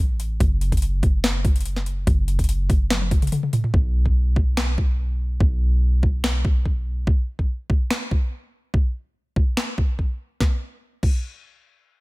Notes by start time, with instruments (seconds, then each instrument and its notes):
Already playing: 808-style bass A1
0.20 closed hi-hat
0.40 808-style bass F#1, kick, closed hi-hat
0.61 closed hi-hat
0.72 kick, closed hi-hat
0.77 closed hi-hat
0.82 closed hi-hat
1.03 kick, closed hi-hat
1.24 snare, closed hi-hat
1.45 kick, closed hi-hat
1.56 closed hi-hat
1.61 closed hi-hat
1.65 closed hi-hat
1.76 snare
1.86 closed hi-hat
2.07 808-style bass F#1, kick, closed hi-hat
2.28 closed hi-hat
2.39 kick, closed hi-hat
2.44 closed hi-hat
2.49 closed hi-hat
2.70 kick, closed hi-hat
2.90 snare, closed hi-hat, high tom
3.01 high tom
3.11 kick, closed hi-hat
3.22 closed hi-hat, mid tom
3.27 closed hi-hat
3.32 closed hi-hat, mid tom
3.43 mid tom
3.53 closed hi-hat, mid tom
3.64 mid tom
3.74 808-style bass B1, kick
4.06 kick
4.36 kick
4.57 finger snap, snare
4.78 kick
5.40 808-style bass B1, kick
6.03 kick
6.24 finger snap, snare
6.45 kick
6.66 kick
7.07 kick
7.39 kick
7.70 kick
7.91 finger snap, snare
8.11 kick
8.74 kick
9.36 kick
9.57 finger snap, snare
9.78 kick
9.99 kick
10.40 kick, snare
11.03 kick, crash